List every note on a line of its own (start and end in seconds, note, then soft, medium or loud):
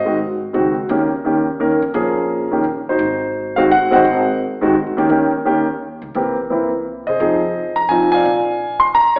0.00 0.50 G#1 medium
0.00 0.17 C5 medium
0.00 0.16 D#5 medium
0.05 0.17 D#3 soft
0.05 0.17 G#3 medium
0.05 0.18 C4 soft
0.05 0.18 F#4 medium
0.53 0.87 C#2 medium
0.53 0.73 D#3 medium
0.53 0.74 G#3 medium
0.53 0.74 C4 medium
0.53 0.74 F#4 medium
0.89 1.67 D#2 medium
0.89 1.09 D#3 medium
0.89 1.09 A#3 medium
0.89 1.09 C#4 medium
0.89 1.10 G4 medium
1.24 1.44 D#3 medium
1.24 1.44 A#3 medium
1.24 1.45 C#4 soft
1.24 1.45 G4 medium
1.59 1.79 D#3 medium
1.59 1.79 A#3 medium
1.59 1.79 C#4 medium
1.59 1.79 A#4 medium
1.71 1.81 G2 medium
1.82 1.93 F2 medium
1.94 2.60 A#1 medium
1.94 2.46 F3 medium
1.94 2.47 A#3 medium
1.94 2.47 C#4 medium
1.94 2.47 G#4 medium
2.51 2.63 D#3 medium
2.51 2.63 A#3 medium
2.51 2.63 C#4 soft
2.51 2.64 G4 medium
2.64 2.97 D#2 medium
2.89 3.54 D#4 medium
2.89 3.54 F#4 soft
2.89 3.60 C5 medium
2.99 4.00 G#1 medium
3.56 3.68 D#3 medium
3.56 3.69 G#3 medium
3.56 3.69 C4 medium
3.56 3.69 F#4 medium
3.56 3.61 F5 medium
3.72 3.91 F#5 medium
3.90 4.03 D#3 medium
3.90 4.03 G#3 medium
3.90 4.03 C4 medium
3.90 4.04 F#4 medium
3.90 4.37 F#5 medium
3.95 4.38 C5 medium
3.95 4.38 D#5 medium
4.05 4.82 G#1 medium
4.61 4.73 D#3 medium
4.61 4.74 G#3 medium
4.61 4.74 C4 medium
4.61 4.74 F#4 medium
4.86 4.97 D#2 medium
4.97 5.09 E2 medium
4.97 5.08 D#3 medium
4.97 5.09 A#3 medium
4.97 5.09 C#4 medium
4.97 5.09 G4 medium
5.09 5.97 D#2 medium
5.09 5.29 D#3 medium
5.09 5.30 A#3 medium
5.09 5.30 C#4 medium
5.09 5.30 G4 medium
5.45 5.65 D#3 medium
5.45 5.65 A#3 medium
5.45 5.65 C#4 medium
5.45 5.65 G4 medium
6.02 6.14 C#2 medium
6.15 7.03 C2 medium
6.15 6.35 E3 medium
6.15 6.35 A#3 medium
6.15 6.35 C4 soft
6.15 6.35 G4 medium
6.50 6.70 E3 medium
6.50 6.70 A#3 soft
6.50 6.70 C4 soft
6.50 6.70 E4 medium
7.07 7.19 C3 medium
7.07 7.20 G#4 soft
7.07 7.74 C5 medium
7.07 7.73 D#5 medium
7.20 8.21 F2 medium
7.20 7.39 F3 medium
7.20 7.40 C4 soft
7.20 7.40 D#4 soft
7.20 7.40 G#4 medium
7.76 7.90 A#5 medium
7.89 8.25 F3 soft
7.89 8.25 C4 soft
7.89 8.25 D#4 soft
7.89 8.26 F4 medium
7.89 8.10 G#5 medium
8.12 8.80 D5 medium
8.12 8.79 F5 medium
8.12 8.78 G#5 loud
8.25 9.19 A#1 medium
8.80 8.85 C6 loud
8.95 9.15 A#5 loud
9.16 9.19 C#5 medium